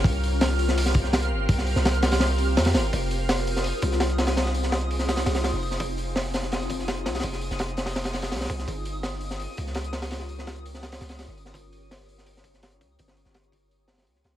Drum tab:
HH |o---o---o---o---o---o---o-x-----|o---o---o-x-o-o-o---o---o-o-o---|o---o---o---o---o---o---o-x-o-o-|o---o---o-x-o---o-o-o-o-o---o---|
SD |--------o-o---o---o---o-o-------|--o---o-o---o-o-o-------o-o-o---|--------o-o---o-------o-o---o-o-|o-o---o-o-----o-o-o-o-o-o-o---o-|
BD |o-------------------o-----------|o-------------------------------|o-------------------o-----------|--------------------------------|

HH |o---o---o---o---o---o---o-x-o-oo|o---o---o-x-o-o-o-o-o-o-ooooo---|o---o---o---o---o---o---o-x-o-o-|o---o---o-x-o---o-o-o-o-o---o---|
SD |--------o-o-o-o-o-o---o-o---o-oo|--o---o-o---o-o-o-o-o-o-oooo--o-|--------o-o---o-------o-o---o-o-|o-o---o-o-----o-o-o-o-o-o-o---o-|
BD |o-------------------o-----------|o---------------------------o---|o-------------------o-----------|--------------------------------|

HH |o---o---o---o---o---o---o-x-o---|o---o---o-x-o---o---ooooo---o---|
SD |--------o-o---o---o---o-o-------|--o---o-o-----------oooo--o-o-o-|
BD |o-------------------o-------o---|o-----------o-------------------|